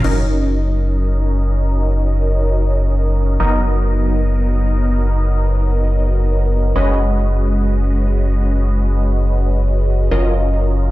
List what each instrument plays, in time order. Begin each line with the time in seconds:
0.04 sub bass F#1, supersaw synth F#3 C#4 D#4 A#4 D#5, crash
3.40 sub bass F#1, supersaw synth F#3 B3 D#4 A#4 D#5
6.76 sub bass F#1, supersaw synth G#3 C#4 F#4 B4 D#5
10.11 sub bass F#1, supersaw synth F#3 C#4 F4 A#4 D#5